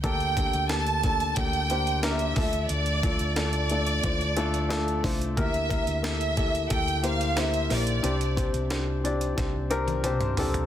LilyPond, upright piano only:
<<
  \new Staff \with { instrumentName = "Upright piano" } { \time 4/4 \key d \minor \tempo 4 = 90 <bes d' g' a'>8 <bes d' g' a'>8 <bes d' g' a'>8 <bes d' g' a'>8 <bes d' g' a'>8 <bes d' g' c''>8 <bes d' g' bes'>8 <a d' f' a'>8~ | <a d' f' a'>8 <a d' f' a'>8 <a d' f' a'>8 <a d' f' a'>8 <a d' f' c''>8 <a d' f' a'>8 <a d' f' a'>8 <a d' f' c''>8 | <bes e' g' bes'>8 <bes e' g' bes'>8 <bes e' g' a'>8 <bes e' g' a'>8 <bes e' g' a'>8 <bes e' g' c''>8 <bes e' g' c''>8 <bes e' g' c''>8 | <c' d' g' c''>8 <c' d' g' c''>8 <c' d' g' c''>8 <c' d' g' d''>8 <c' d' g' c''>8 <c' d' g' bes'>8 <c' d' g' c''>8 <c' d' g' a'>8 | }
  \new Staff \with { instrumentName = "Upright piano" } { \clef bass \time 4/4 \key d \minor d4. r2 d8~ | d4 r2. | d4. r2 r8 | c4. r2 r8 | }
>>